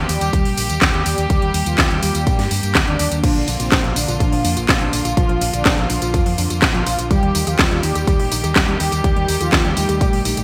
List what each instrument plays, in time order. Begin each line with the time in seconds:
Already playing: string section G3 A#3 G4
0.09 fingered electric bass D#2, analog polysynth G3 G4, open hi-hat, tambourine
0.21 fingered electric bass D#2, closed hi-hat, tambourine
0.33 fingered electric bass D#2, kick, closed hi-hat, tambourine
0.45 fingered electric bass A#1, open hi-hat
0.57 fingered electric bass A#1, open hi-hat, tambourine
0.70 fingered electric bass D#2, closed hi-hat, tambourine
0.82 fingered electric bass D#2, kick, snare, clap, closed hi-hat, tambourine
0.94 fingered electric bass D#2, analog polysynth G3 G4, closed hi-hat
1.06 fingered electric bass D#2, open hi-hat, tambourine
1.18 fingered electric bass D#2, closed hi-hat, tambourine
1.30 fingered electric bass D#2, analog polysynth G3 G4, kick, closed hi-hat, tambourine
1.42 fingered electric bass D#2, closed hi-hat
1.54 fingered electric bass D#2, open hi-hat, tambourine
1.66 fingered electric bass D#2, analog polysynth F3 F4, closed hi-hat, tambourine
1.78 fingered electric bass D#2, kick, snare, clap, closed hi-hat, tambourine
1.90 fingered electric bass D#2, closed hi-hat
2.03 fingered electric bass D#2, analog polysynth G3 G4, open hi-hat, tambourine
2.15 fingered electric bass D#2, closed hi-hat, tambourine
2.27 fingered electric bass A#1, kick, closed hi-hat, tambourine
2.39 fingered electric bass G2, snare, open hi-hat
2.51 fingered electric bass G2, open hi-hat, tambourine
2.63 fingered electric bass G2, closed hi-hat, tambourine
2.75 fingered electric bass D#2, kick, snare, clap, closed hi-hat, tambourine
2.87 fingered electric bass D#2, analog polysynth D3 D4, closed hi-hat
2.99 fingered electric bass D#2, open hi-hat, tambourine
3.11 fingered electric bass D#2, closed hi-hat, tambourine
3.24 fingered electric bass A#1, analog polysynth D3 D4, string section D3 F3 F4, synth arpeggio sound F3, kick, closed hi-hat, tambourine, crash
3.36 fingered electric bass A#1, synth arpeggio sound F3, closed hi-hat
3.48 fingered electric bass A#1, synth arpeggio sound D4, open hi-hat, tambourine
3.60 fingered electric bass A#1, analog polysynth C3 C4, synth arpeggio sound F4, closed hi-hat, tambourine
3.72 fingered electric bass A#1, synth arpeggio sound F3, kick, snare, clap, closed hi-hat, tambourine
3.84 fingered electric bass A#1, synth arpeggio sound F3, closed hi-hat
3.96 fingered electric bass A#1, analog polysynth D3 D4, synth arpeggio sound D4, open hi-hat, tambourine
4.08 fingered electric bass A#1, synth arpeggio sound F4, closed hi-hat, tambourine
4.20 fingered electric bass A#1, synth arpeggio sound F3, kick, closed hi-hat, tambourine
4.32 fingered electric bass A#2, synth arpeggio sound F3, open hi-hat
4.44 fingered electric bass F2, synth arpeggio sound D4, open hi-hat, tambourine
4.57 fingered electric bass A#1, synth arpeggio sound F4, closed hi-hat, tambourine
4.69 fingered electric bass A#1, synth arpeggio sound F3, kick, snare, clap, closed hi-hat, tambourine
4.81 fingered electric bass A#1, analog polysynth D3 D4, synth arpeggio sound F3, closed hi-hat
4.93 fingered electric bass A#1, synth arpeggio sound D4, open hi-hat, tambourine
5.05 fingered electric bass A#1, synth arpeggio sound F4, closed hi-hat, tambourine
5.17 fingered electric bass A#1, synth arpeggio sound F3, analog polysynth F3 F4, kick, closed hi-hat, tambourine
5.29 fingered electric bass A#1, synth arpeggio sound F3, closed hi-hat
5.41 fingered electric bass A#1, synth arpeggio sound D4, open hi-hat, tambourine
5.53 fingered electric bass A#1, analog polysynth D3 D4, synth arpeggio sound F4, closed hi-hat, tambourine
5.66 fingered electric bass A#1, synth arpeggio sound F3, kick, snare, clap, closed hi-hat, tambourine
5.78 fingered electric bass A#1, synth arpeggio sound F3, closed hi-hat
5.90 fingered electric bass A#1, analog polysynth F3 F4, synth arpeggio sound D4, open hi-hat, tambourine
6.02 fingered electric bass A#1, synth arpeggio sound F4, closed hi-hat, tambourine
6.14 fingered electric bass F2, synth arpeggio sound F3, kick, closed hi-hat, tambourine
6.26 fingered electric bass F2, synth arpeggio sound F3, open hi-hat
6.38 fingered electric bass F2, synth arpeggio sound D4, open hi-hat, tambourine
6.50 fingered electric bass F2, synth arpeggio sound F4, closed hi-hat, tambourine
6.62 fingered electric bass A#1, synth arpeggio sound F3, kick, snare, clap, closed hi-hat
6.74 fingered electric bass A#1, synth arpeggio sound F3, analog polysynth F3 F4, closed hi-hat
6.86 fingered electric bass A#1, synth arpeggio sound D4, open hi-hat, tambourine
6.99 fingered electric bass A#1, synth arpeggio sound F4, closed hi-hat, tambourine
7.11 fingered electric bass D#2, string section D#3 G3 G4, synth arpeggio sound G3, analog polysynth G3 G4, kick, closed hi-hat, tambourine
7.23 fingered electric bass D#2, synth arpeggio sound G3, closed hi-hat
7.35 fingered electric bass D#2, synth arpeggio sound D#4, open hi-hat, tambourine
7.47 fingered electric bass D#2, analog polysynth F3 F4, synth arpeggio sound G4, closed hi-hat, tambourine
7.59 fingered electric bass D#2, synth arpeggio sound G3, kick, snare, clap, closed hi-hat, tambourine
7.71 fingered electric bass D#2, synth arpeggio sound G3, closed hi-hat
7.83 fingered electric bass D#2, analog polysynth G3 G4, synth arpeggio sound D#4, open hi-hat, tambourine
7.95 fingered electric bass D#2, synth arpeggio sound G4, closed hi-hat, tambourine
8.07 fingered electric bass D#2, synth arpeggio sound G3, kick, closed hi-hat, tambourine
8.20 fingered electric bass A#1, synth arpeggio sound G3, open hi-hat
8.32 fingered electric bass A#1, synth arpeggio sound D#4, open hi-hat, tambourine
8.44 fingered electric bass D#2, synth arpeggio sound G4, closed hi-hat, tambourine
8.56 fingered electric bass D#2, synth arpeggio sound G3, kick, snare, clap, closed hi-hat, tambourine
8.68 fingered electric bass D#2, synth arpeggio sound G3, analog polysynth G3 G4, closed hi-hat
8.80 fingered electric bass D#2, synth arpeggio sound D#4, open hi-hat, tambourine
8.92 fingered electric bass D#2, synth arpeggio sound G4, closed hi-hat, tambourine
9.04 fingered electric bass D#2, synth arpeggio sound G3, analog polysynth G3 G4, string section A3, kick, closed hi-hat, tambourine
9.16 fingered electric bass D#2, synth arpeggio sound G3, closed hi-hat
9.28 fingered electric bass D#2, synth arpeggio sound D#4, open hi-hat, tambourine
9.41 fingered electric bass D#2, analog polysynth F3 F4, synth arpeggio sound G4, closed hi-hat, tambourine
9.53 fingered electric bass D#2, synth arpeggio sound G3, kick, snare, clap, closed hi-hat, tambourine
9.65 fingered electric bass D#2, synth arpeggio sound G3, closed hi-hat
9.77 fingered electric bass D#2, analog polysynth G3 G4, synth arpeggio sound D#4, open hi-hat, tambourine
9.89 fingered electric bass D#2, synth arpeggio sound G4, closed hi-hat, tambourine
10.01 fingered electric bass A#1, synth arpeggio sound G3, kick, closed hi-hat, tambourine
10.13 fingered electric bass A#1, synth arpeggio sound G3, open hi-hat
10.25 fingered electric bass A#1, synth arpeggio sound D#4, open hi-hat, tambourine
10.37 fingered electric bass A#1, synth arpeggio sound G4, closed hi-hat, tambourine